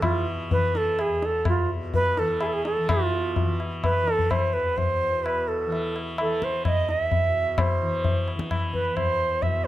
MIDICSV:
0, 0, Header, 1, 4, 480
1, 0, Start_track
1, 0, Tempo, 474308
1, 518, Time_signature, 5, 2, 24, 8
1, 5313, Tempo, 464396
1, 9885, End_track
2, 0, Start_track
2, 0, Title_t, "Bansuri"
2, 0, Program_c, 0, 73
2, 34, Note_on_c, 0, 65, 79
2, 259, Note_off_c, 0, 65, 0
2, 523, Note_on_c, 0, 71, 108
2, 773, Note_on_c, 0, 69, 92
2, 788, Note_off_c, 0, 71, 0
2, 1021, Note_on_c, 0, 68, 89
2, 1036, Note_off_c, 0, 69, 0
2, 1267, Note_on_c, 0, 69, 88
2, 1282, Note_off_c, 0, 68, 0
2, 1496, Note_off_c, 0, 69, 0
2, 1509, Note_on_c, 0, 65, 79
2, 1722, Note_off_c, 0, 65, 0
2, 1969, Note_on_c, 0, 71, 119
2, 2214, Note_on_c, 0, 69, 101
2, 2229, Note_off_c, 0, 71, 0
2, 2452, Note_on_c, 0, 68, 88
2, 2467, Note_off_c, 0, 69, 0
2, 2488, Note_on_c, 0, 69, 79
2, 2503, Note_off_c, 0, 68, 0
2, 2563, Note_on_c, 0, 68, 91
2, 2578, Note_off_c, 0, 69, 0
2, 2685, Note_off_c, 0, 68, 0
2, 2690, Note_on_c, 0, 69, 93
2, 2912, Note_off_c, 0, 69, 0
2, 2937, Note_on_c, 0, 65, 74
2, 3610, Note_off_c, 0, 65, 0
2, 3888, Note_on_c, 0, 71, 103
2, 4171, Note_off_c, 0, 71, 0
2, 4171, Note_on_c, 0, 69, 103
2, 4358, Note_on_c, 0, 72, 98
2, 4373, Note_off_c, 0, 69, 0
2, 4590, Note_on_c, 0, 71, 88
2, 4605, Note_off_c, 0, 72, 0
2, 4831, Note_on_c, 0, 72, 94
2, 4846, Note_off_c, 0, 71, 0
2, 5306, Note_on_c, 0, 71, 93
2, 5322, Note_off_c, 0, 72, 0
2, 5551, Note_on_c, 0, 69, 77
2, 5567, Note_off_c, 0, 71, 0
2, 6037, Note_off_c, 0, 69, 0
2, 6307, Note_on_c, 0, 69, 87
2, 6542, Note_on_c, 0, 72, 88
2, 6558, Note_off_c, 0, 69, 0
2, 6766, Note_off_c, 0, 72, 0
2, 6772, Note_on_c, 0, 75, 99
2, 7023, Note_on_c, 0, 76, 90
2, 7038, Note_off_c, 0, 75, 0
2, 7732, Note_on_c, 0, 72, 82
2, 7747, Note_off_c, 0, 76, 0
2, 8447, Note_off_c, 0, 72, 0
2, 8917, Note_on_c, 0, 71, 89
2, 9148, Note_on_c, 0, 72, 105
2, 9163, Note_off_c, 0, 71, 0
2, 9626, Note_on_c, 0, 76, 91
2, 9642, Note_off_c, 0, 72, 0
2, 9873, Note_off_c, 0, 76, 0
2, 9885, End_track
3, 0, Start_track
3, 0, Title_t, "Tanpura"
3, 0, Program_c, 1, 104
3, 0, Note_on_c, 1, 40, 66
3, 0, Note_on_c, 1, 47, 66
3, 0, Note_on_c, 1, 52, 65
3, 526, Note_off_c, 1, 52, 0
3, 526, Note_on_c, 1, 52, 57
3, 1078, Note_off_c, 1, 40, 0
3, 1082, Note_on_c, 1, 40, 56
3, 1659, Note_off_c, 1, 47, 0
3, 1664, Note_on_c, 1, 47, 53
3, 2220, Note_off_c, 1, 52, 0
3, 2220, Note_on_c, 1, 52, 61
3, 2800, Note_off_c, 1, 52, 0
3, 2800, Note_on_c, 1, 52, 65
3, 2946, Note_off_c, 1, 47, 0
3, 2946, Note_on_c, 1, 47, 54
3, 3481, Note_off_c, 1, 52, 0
3, 3481, Note_on_c, 1, 52, 54
3, 4057, Note_off_c, 1, 52, 0
3, 4057, Note_on_c, 1, 52, 54
3, 4602, Note_off_c, 1, 40, 0
3, 4606, Note_on_c, 1, 40, 57
3, 5170, Note_off_c, 1, 47, 0
3, 5170, Note_on_c, 1, 47, 55
3, 5739, Note_off_c, 1, 52, 0
3, 5739, Note_on_c, 1, 52, 60
3, 6305, Note_off_c, 1, 52, 0
3, 6305, Note_on_c, 1, 52, 67
3, 6842, Note_off_c, 1, 40, 0
3, 6846, Note_on_c, 1, 40, 52
3, 7398, Note_off_c, 1, 47, 0
3, 7402, Note_on_c, 1, 47, 58
3, 7966, Note_off_c, 1, 52, 0
3, 7966, Note_on_c, 1, 52, 61
3, 8525, Note_off_c, 1, 52, 0
3, 8525, Note_on_c, 1, 52, 59
3, 9089, Note_off_c, 1, 40, 0
3, 9093, Note_on_c, 1, 40, 59
3, 9648, Note_off_c, 1, 47, 0
3, 9652, Note_on_c, 1, 47, 64
3, 9885, Note_off_c, 1, 40, 0
3, 9885, Note_off_c, 1, 47, 0
3, 9885, Note_off_c, 1, 52, 0
3, 9885, End_track
4, 0, Start_track
4, 0, Title_t, "Tabla"
4, 24, Note_on_c, 9, 60, 86
4, 24, Note_on_c, 9, 64, 89
4, 125, Note_off_c, 9, 60, 0
4, 125, Note_off_c, 9, 64, 0
4, 518, Note_on_c, 9, 63, 75
4, 518, Note_on_c, 9, 64, 71
4, 620, Note_off_c, 9, 63, 0
4, 620, Note_off_c, 9, 64, 0
4, 760, Note_on_c, 9, 62, 70
4, 861, Note_off_c, 9, 62, 0
4, 999, Note_on_c, 9, 60, 77
4, 1100, Note_off_c, 9, 60, 0
4, 1238, Note_on_c, 9, 62, 66
4, 1340, Note_off_c, 9, 62, 0
4, 1471, Note_on_c, 9, 60, 96
4, 1471, Note_on_c, 9, 64, 83
4, 1572, Note_off_c, 9, 60, 0
4, 1572, Note_off_c, 9, 64, 0
4, 1960, Note_on_c, 9, 63, 77
4, 1960, Note_on_c, 9, 64, 62
4, 2061, Note_off_c, 9, 63, 0
4, 2061, Note_off_c, 9, 64, 0
4, 2199, Note_on_c, 9, 62, 76
4, 2300, Note_off_c, 9, 62, 0
4, 2434, Note_on_c, 9, 60, 75
4, 2536, Note_off_c, 9, 60, 0
4, 2683, Note_on_c, 9, 62, 78
4, 2784, Note_off_c, 9, 62, 0
4, 2924, Note_on_c, 9, 60, 106
4, 2924, Note_on_c, 9, 64, 83
4, 3025, Note_off_c, 9, 60, 0
4, 3025, Note_off_c, 9, 64, 0
4, 3403, Note_on_c, 9, 63, 75
4, 3403, Note_on_c, 9, 64, 72
4, 3504, Note_off_c, 9, 63, 0
4, 3504, Note_off_c, 9, 64, 0
4, 3643, Note_on_c, 9, 60, 55
4, 3744, Note_off_c, 9, 60, 0
4, 3883, Note_on_c, 9, 60, 80
4, 3883, Note_on_c, 9, 64, 63
4, 3984, Note_off_c, 9, 60, 0
4, 3984, Note_off_c, 9, 64, 0
4, 4123, Note_on_c, 9, 62, 59
4, 4225, Note_off_c, 9, 62, 0
4, 4239, Note_on_c, 9, 64, 45
4, 4340, Note_off_c, 9, 64, 0
4, 4359, Note_on_c, 9, 60, 80
4, 4359, Note_on_c, 9, 64, 67
4, 4460, Note_off_c, 9, 60, 0
4, 4460, Note_off_c, 9, 64, 0
4, 4835, Note_on_c, 9, 63, 75
4, 4835, Note_on_c, 9, 64, 69
4, 4936, Note_off_c, 9, 63, 0
4, 4936, Note_off_c, 9, 64, 0
4, 5320, Note_on_c, 9, 60, 75
4, 5424, Note_off_c, 9, 60, 0
4, 5802, Note_on_c, 9, 63, 79
4, 5906, Note_off_c, 9, 63, 0
4, 6045, Note_on_c, 9, 60, 54
4, 6148, Note_off_c, 9, 60, 0
4, 6277, Note_on_c, 9, 60, 81
4, 6381, Note_off_c, 9, 60, 0
4, 6522, Note_on_c, 9, 37, 55
4, 6625, Note_off_c, 9, 37, 0
4, 6761, Note_on_c, 9, 60, 77
4, 6761, Note_on_c, 9, 64, 65
4, 6865, Note_off_c, 9, 60, 0
4, 6865, Note_off_c, 9, 64, 0
4, 7004, Note_on_c, 9, 62, 58
4, 7108, Note_off_c, 9, 62, 0
4, 7242, Note_on_c, 9, 63, 78
4, 7242, Note_on_c, 9, 64, 61
4, 7345, Note_off_c, 9, 63, 0
4, 7345, Note_off_c, 9, 64, 0
4, 7720, Note_on_c, 9, 60, 99
4, 7720, Note_on_c, 9, 64, 91
4, 7823, Note_off_c, 9, 60, 0
4, 7823, Note_off_c, 9, 64, 0
4, 8202, Note_on_c, 9, 63, 77
4, 8202, Note_on_c, 9, 64, 73
4, 8305, Note_off_c, 9, 63, 0
4, 8305, Note_off_c, 9, 64, 0
4, 8442, Note_on_c, 9, 60, 52
4, 8546, Note_off_c, 9, 60, 0
4, 8561, Note_on_c, 9, 37, 63
4, 8664, Note_off_c, 9, 37, 0
4, 8681, Note_on_c, 9, 60, 85
4, 8681, Note_on_c, 9, 64, 69
4, 8785, Note_off_c, 9, 60, 0
4, 8785, Note_off_c, 9, 64, 0
4, 8919, Note_on_c, 9, 64, 52
4, 9022, Note_off_c, 9, 64, 0
4, 9155, Note_on_c, 9, 60, 77
4, 9155, Note_on_c, 9, 64, 63
4, 9258, Note_off_c, 9, 60, 0
4, 9258, Note_off_c, 9, 64, 0
4, 9627, Note_on_c, 9, 63, 81
4, 9627, Note_on_c, 9, 64, 65
4, 9730, Note_off_c, 9, 63, 0
4, 9730, Note_off_c, 9, 64, 0
4, 9885, End_track
0, 0, End_of_file